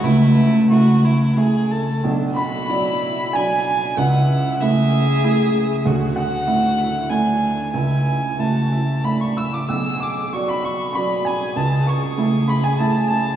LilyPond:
<<
  \new Staff \with { instrumentName = "Violin" } { \time 3/4 \key a \major \tempo 4 = 94 e'4 fis'8 e'8 gis'8 a'8 | r8 b''4. gis''4 | fis''4 e''2 | r8 fis''4. gis''4 |
gis''4 a''4 b''16 cis'''16 e'''16 d'''16 | e'''8 d'''8 cis'''16 b''16 cis'''8 b''8 gis''8 | a''8 cis'''4 b''16 gis''16 a''8 a''8 | }
  \new Staff \with { instrumentName = "Felt piano" } { \time 3/4 \key a \major << { r2. | r8 b''4. gis''4 | fis''4 e''2 | r8 fis''4. gis''4 |
gis''4 a''4 b''16 cis'''16 e'''16 d'''16 | e'''8 d'''8 cis'''16 b''16 cis'''8 b''8 gis''8 | a''8 cis'''4 b''16 gis''16 a''8 a''8 | } \\ { cis,4 <a e' e''>4 <a e' e''>4 | b,,4 <fis fis' d''>4 <fis fis' d''>4 | cis,4 <a e'>4 <a e' e''>4 | d,4 <a e' e''>4 <a e' e''>4 |
cis,4 <a e' e''>4 <a e' e''>4 | b,,4 <fis fis' d''>4 <fis fis' d''>4 | cis,4 <a e' e''>4 <a e' e''>4 | } >> }
  \new Staff \with { instrumentName = "Cello" } { \time 3/4 \key a \major a2 r4 | d'8 fis'8 e'4 d'4 | e'4 gis'2 | fis'4 fis'8 e'8 d'4 |
e'4 fis'8 e'8 d'8 e'8 | gis'4 fis'4 gis'4~ | gis'2. | }
>>